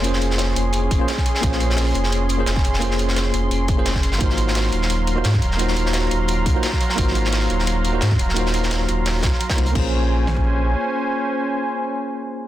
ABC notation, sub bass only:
X:1
M:4/4
L:1/16
Q:"Swing 16ths" 1/4=173
K:Bbm
V:1 name="Sub bass" clef=bass
F,,,6 F,,,4 F,,, z4 z | B,,,6 F,,,6 F,,,2 F,,,2- | F,,,6 F,,,2 F,,,6- F,,, A,,, | A,,,6 E,,,6 A,,2 E,,,2- |
E,,,6 E,,,4 E,, z4 z | A,,,6 E,,,6 A,,2 E,,,2- | E,,,6 E,,,4 E,, z3 C,,2 | B,,,12 z4 |
z16 |]